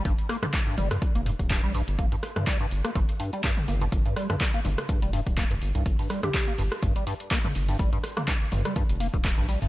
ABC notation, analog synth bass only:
X:1
M:4/4
L:1/16
Q:"Swing 16ths" 1/4=124
K:Gm
V:1 name="Analog synth bass" clef=bass
G,,, z4 z G,,, z2 F,,,2 D,,,2 B,,,2 G,,, | G,,, z4 z G,,, z G,,, z4 z G,,,2 | G,,, z4 z G,,, z2 F,,,2 D,,,2 F,,, G,,, C,, | G,,, z4 z G,,, z G,,, z4 z G,,,2 |
G,,, z4 z G,,, z2 F,,,2 D,,,2 B,,,2 G,,, |]